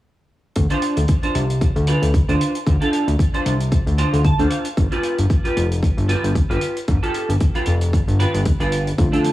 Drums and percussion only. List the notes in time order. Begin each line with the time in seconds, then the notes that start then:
0.55 kick, closed hi-hat
0.70 closed hi-hat
0.82 closed hi-hat
0.97 closed hi-hat
1.08 kick, closed hi-hat
1.23 closed hi-hat
1.35 closed hi-hat
1.50 closed hi-hat
1.61 kick, closed hi-hat
1.76 closed hi-hat
1.87 closed hi-hat
2.02 closed hi-hat
2.14 kick, closed hi-hat
2.29 closed hi-hat
2.41 closed hi-hat
2.55 closed hi-hat
2.67 kick, closed hi-hat
2.81 closed hi-hat
2.93 closed hi-hat
3.08 closed hi-hat
3.19 kick, closed hi-hat
3.34 closed hi-hat
3.46 closed hi-hat
3.60 closed hi-hat
3.72 kick, closed hi-hat
3.87 closed hi-hat
3.98 closed hi-hat
4.13 closed hi-hat
4.24 kick, closed hi-hat
4.39 closed hi-hat
4.50 closed hi-hat
4.65 closed hi-hat
4.77 kick, closed hi-hat
4.92 closed hi-hat
5.03 closed hi-hat
5.18 closed hi-hat
5.30 kick, closed hi-hat
5.45 closed hi-hat
5.57 closed hi-hat
5.72 closed hi-hat
5.83 kick, closed hi-hat
5.98 closed hi-hat
6.09 closed hi-hat
6.24 closed hi-hat
6.35 kick, closed hi-hat
6.51 closed hi-hat
6.61 closed hi-hat
6.77 closed hi-hat
6.88 kick, closed hi-hat
7.03 closed hi-hat
7.14 closed hi-hat
7.29 closed hi-hat
7.40 kick, closed hi-hat
7.55 closed hi-hat
7.66 closed hi-hat
7.81 closed hi-hat
7.93 kick, closed hi-hat
8.08 closed hi-hat
8.20 closed hi-hat
8.34 closed hi-hat
8.45 kick, closed hi-hat
8.60 closed hi-hat
8.72 closed hi-hat
8.87 closed hi-hat
8.98 kick, closed hi-hat
9.13 closed hi-hat
9.24 closed hi-hat